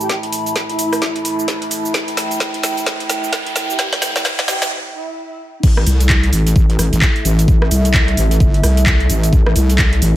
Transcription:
0.00 4.67 A3 medium
0.00 4.67 E4 medium
0.00 0.14 G4 medium
0.00 4.71 A4 medium
0.00 4.67 E5 medium
0.00 4.71 E5 medium
0.00 1.90 A5 medium
0.00 4.71 B5 medium
0.00 riser medium
0.00 cabasa soft
0.09 kick loud
0.09 snare medium
0.09 closed hi-hat medium
0.09 cabasa soft
0.23 closed hi-hat medium
0.33 open hi-hat loud
0.33 cabasa medium
0.46 closed hi-hat soft
0.46 cabasa soft
0.56 kick loud
0.56 snare medium
0.56 closed hi-hat medium
0.56 cabasa soft
0.70 1.16 E4 loud
0.70 closed hi-hat medium
0.79 open hi-hat loud
0.79 cabasa medium
0.93 cross-stick medium
0.93 open hi-hat medium
0.93 cabasa soft
1.02 kick loud
1.02 snare medium
1.02 closed hi-hat medium
1.02 cabasa soft
1.16 closed hi-hat medium
1.25 open hi-hat loud
1.25 cabasa medium
1.39 cabasa soft
1.48 kick loud
1.48 snare medium
1.48 closed hi-hat medium
1.48 cabasa soft
1.62 closed hi-hat medium
1.71 open hi-hat loud
1.71 cabasa medium
1.85 cabasa soft
1.94 4.68 G5 medium
1.94 kick loud
1.94 snare medium
1.94 closed hi-hat medium
1.94 cabasa soft
2.08 closed hi-hat medium
2.17 snare medium
2.17 open hi-hat loud
2.17 cabasa medium
2.31 closed hi-hat soft
2.31 cabasa soft
2.40 kick loud
2.40 snare medium
2.40 closed hi-hat medium
2.40 cabasa soft
2.54 closed hi-hat medium
2.63 snare medium
2.63 open hi-hat loud
2.63 cabasa medium
2.77 closed hi-hat soft
2.77 cabasa soft
2.86 kick loud
2.86 snare medium
2.86 closed hi-hat medium
2.86 cabasa soft
3.00 closed hi-hat medium
3.10 snare medium
3.10 open hi-hat loud
3.10 cabasa medium
3.24 cabasa soft
3.33 kick loud
3.33 snare medium
3.33 closed hi-hat medium
3.33 cabasa soft
3.46 closed hi-hat soft
3.56 snare medium
3.56 open hi-hat loud
3.56 cabasa medium
3.70 3.84 G4 medium
3.70 cabasa soft
3.79 kick loud
3.79 snare medium
3.79 closed hi-hat medium
3.79 cabasa soft
3.93 snare medium
3.93 closed hi-hat medium
4.02 snare medium
4.02 open hi-hat loud
4.02 cabasa medium
4.16 snare medium
4.16 closed hi-hat soft
4.16 cabasa soft
4.25 kick loud
4.25 snare medium
4.25 closed hi-hat medium
4.25 cabasa soft
4.39 snare medium
4.39 closed hi-hat medium
4.48 4.65 G4 loud
4.48 snare loud
4.48 open hi-hat loud
4.48 cabasa medium
4.62 snare medium
4.62 open hi-hat medium
4.62 cabasa soft
4.94 5.40 E4 medium
5.63 5.85 A1 medium
5.63 10.16 A3 medium
5.63 10.16 E4 medium
5.63 10.16 A4 medium
5.63 10.16 A4 loud
5.63 kick loud
5.63 crash loud
5.63 cabasa soft
5.77 cross-stick medium
5.86 6.31 C2 loud
5.86 open hi-hat loud
5.86 cabasa medium
5.99 9.71 E5 medium
5.99 closed hi-hat medium
5.99 cabasa soft
6.09 kick loud
6.09 clap loud
6.09 cabasa soft
6.23 closed hi-hat medium
6.33 6.54 A1 loud
6.33 open hi-hat medium
6.33 cabasa medium
6.47 closed hi-hat medium
6.47 cabasa soft
6.56 6.77 A1 loud
6.56 kick loud
6.56 cabasa soft
6.70 closed hi-hat medium
6.79 6.90 A1 loud
6.79 cross-stick medium
6.79 open hi-hat loud
6.79 cabasa medium
6.93 7.00 A1 medium
6.93 closed hi-hat medium
6.93 cabasa soft
7.02 kick loud
7.02 clap loud
7.02 cabasa soft
7.16 closed hi-hat soft
7.25 7.47 A1 loud
7.25 open hi-hat medium
7.25 cabasa medium
7.39 closed hi-hat medium
7.39 cabasa soft
7.48 7.70 A1 medium
7.48 kick loud
7.48 cabasa soft
7.62 cross-stick medium
7.71 8.16 C2 loud
7.71 open hi-hat loud
7.71 cabasa medium
7.85 closed hi-hat medium
7.85 cabasa soft
7.94 kick loud
7.94 clap loud
7.94 cabasa soft
8.08 closed hi-hat medium
8.17 8.39 A1 loud
8.17 open hi-hat medium
8.17 cabasa medium
8.31 closed hi-hat medium
8.31 cabasa soft
8.40 8.62 G1 loud
8.40 kick loud
8.40 cabasa soft
8.54 closed hi-hat medium
8.63 9.08 C2 loud
8.63 cross-stick medium
8.63 open hi-hat loud
8.63 cabasa medium
8.77 closed hi-hat medium
8.77 cabasa soft
8.86 kick loud
8.86 clap loud
8.86 cabasa soft
9.00 closed hi-hat soft
9.10 9.31 A1 loud
9.10 open hi-hat medium
9.10 cabasa medium
9.23 closed hi-hat medium
9.23 cabasa soft
9.33 9.54 A1 medium
9.33 kick loud
9.33 cabasa soft
9.46 cross-stick medium
9.56 10.00 C2 loud
9.56 open hi-hat loud
9.56 cabasa medium
9.68 10.16 D5 medium
9.68 closed hi-hat medium
9.68 cabasa soft
9.79 kick loud
9.79 clap loud
9.79 cabasa soft
9.93 closed hi-hat medium
10.02 10.16 A1 loud
10.02 open hi-hat loud
10.02 cabasa medium

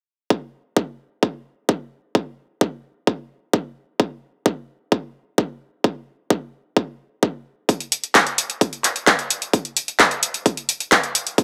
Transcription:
0.30 kick loud
0.77 kick loud
1.23 kick loud
1.69 kick loud
2.15 kick loud
2.61 kick loud
3.07 kick loud
3.53 kick loud
4.00 kick loud
4.46 kick loud
4.92 kick loud
5.38 kick loud
5.84 kick loud
6.30 kick loud
6.77 kick loud
7.23 kick loud
7.69 kick loud
7.69 closed hi-hat medium
7.80 closed hi-hat soft
7.92 closed hi-hat medium
8.04 closed hi-hat soft
8.15 kick loud
8.15 clap loud
8.15 closed hi-hat medium
8.27 closed hi-hat soft
8.38 closed hi-hat medium
8.50 closed hi-hat soft
8.61 kick loud
8.61 closed hi-hat medium
8.73 closed hi-hat soft
8.84 clap soft
8.84 closed hi-hat medium
8.96 closed hi-hat soft
9.07 kick loud
9.07 clap loud
9.07 closed hi-hat medium
9.19 closed hi-hat soft
9.30 closed hi-hat medium
9.42 closed hi-hat soft
9.53 kick loud
9.53 closed hi-hat medium
9.65 closed hi-hat soft
9.77 closed hi-hat medium
9.88 closed hi-hat soft
9.99 kick loud
9.99 clap loud
9.99 closed hi-hat medium
10.11 closed hi-hat soft
10.23 closed hi-hat medium
10.34 closed hi-hat soft
10.46 kick loud
10.46 closed hi-hat medium
10.57 closed hi-hat soft
10.69 closed hi-hat medium
10.80 closed hi-hat soft
10.92 kick loud
10.92 clap loud
10.92 closed hi-hat medium
11.04 closed hi-hat soft
11.15 closed hi-hat medium
11.27 closed hi-hat soft
11.38 kick loud
11.38 closed hi-hat medium

